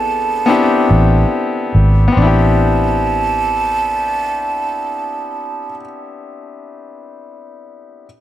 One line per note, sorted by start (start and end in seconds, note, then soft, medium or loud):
0.00 0.86 A1 loud
0.00 0.39 B3 medium
0.00 0.40 C4 medium
0.00 0.40 D4 medium
0.00 0.41 E4 medium
0.00 2.18 G#4 medium
0.00 0.45 A4 medium
0.00 1.75 A5 loud
0.46 2.06 B3 medium
0.46 2.09 C4 medium
0.46 2.09 D4 medium
0.46 2.10 E4 medium
0.51 2.10 G4 medium
0.91 1.24 A1 medium
1.75 2.08 G#1 medium
2.08 5.65 B3 medium
2.12 5.70 C4 medium
2.17 5.74 A1 medium
2.17 5.75 D4 medium
2.17 5.75 A5 loud
2.22 5.80 E4 medium
2.27 5.84 G4 medium